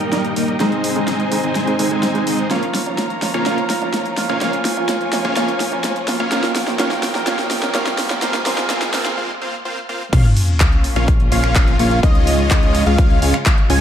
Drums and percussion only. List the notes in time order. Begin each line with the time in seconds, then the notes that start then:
0.13 snare, closed hi-hat
0.25 closed hi-hat
0.36 open hi-hat
0.48 closed hi-hat
0.60 snare, closed hi-hat
0.72 closed hi-hat
0.84 open hi-hat
0.96 closed hi-hat
1.08 snare, closed hi-hat
1.20 closed hi-hat
1.32 open hi-hat
1.44 closed hi-hat
1.55 snare, closed hi-hat
1.67 closed hi-hat
1.79 open hi-hat
2.03 snare, closed hi-hat
2.15 closed hi-hat
2.27 open hi-hat
2.39 closed hi-hat
2.51 snare, closed hi-hat
2.63 closed hi-hat
2.75 snare, open hi-hat
2.86 closed hi-hat
2.98 snare, closed hi-hat
3.10 closed hi-hat
3.22 snare, open hi-hat
3.34 closed hi-hat
3.46 snare, closed hi-hat
3.58 closed hi-hat
3.70 snare, open hi-hat
3.82 closed hi-hat
3.94 snare, closed hi-hat
4.06 closed hi-hat
4.17 snare, open hi-hat
4.29 closed hi-hat
4.41 snare, closed hi-hat
4.53 closed hi-hat
4.65 snare, open hi-hat
4.77 closed hi-hat
4.89 snare, closed hi-hat
5.01 closed hi-hat
5.13 snare, open hi-hat
5.25 closed hi-hat
5.36 snare, closed hi-hat
5.48 closed hi-hat
5.60 snare, open hi-hat
5.72 closed hi-hat
5.84 snare, closed hi-hat
5.96 closed hi-hat
6.08 snare, open hi-hat
6.20 closed hi-hat
6.32 snare, closed hi-hat
6.44 snare, closed hi-hat
6.56 snare, open hi-hat
6.68 snare, closed hi-hat
6.79 snare, closed hi-hat
6.91 snare, closed hi-hat
7.03 snare, open hi-hat
7.15 snare, closed hi-hat
7.27 snare, closed hi-hat
7.39 snare, closed hi-hat
7.51 snare, open hi-hat
7.63 snare
7.75 snare, closed hi-hat
7.87 snare, closed hi-hat
7.98 snare, open hi-hat
8.10 snare
8.22 snare, closed hi-hat
8.34 snare, closed hi-hat
8.46 snare, open hi-hat
8.58 snare
8.70 snare, closed hi-hat
8.82 snare, closed hi-hat
8.94 snare, open hi-hat
9.06 snare, closed hi-hat
10.13 kick, closed hi-hat, crash
10.25 closed hi-hat
10.37 open hi-hat
10.48 closed hi-hat
10.60 kick, clap, closed hi-hat
10.72 closed hi-hat
10.84 open hi-hat
10.96 closed hi-hat
11.08 kick, closed hi-hat
11.20 closed hi-hat
11.32 open hi-hat
11.44 finger snap, closed hi-hat
11.55 kick, clap, closed hi-hat
11.68 closed hi-hat
11.79 open hi-hat
11.91 closed hi-hat
12.03 kick, closed hi-hat
12.15 closed hi-hat
12.27 open hi-hat
12.39 closed hi-hat
12.51 kick, clap, closed hi-hat
12.63 closed hi-hat
12.75 open hi-hat
12.86 closed hi-hat
12.98 kick, closed hi-hat
13.10 closed hi-hat
13.22 open hi-hat
13.34 finger snap
13.46 kick, clap, closed hi-hat
13.58 closed hi-hat
13.70 open hi-hat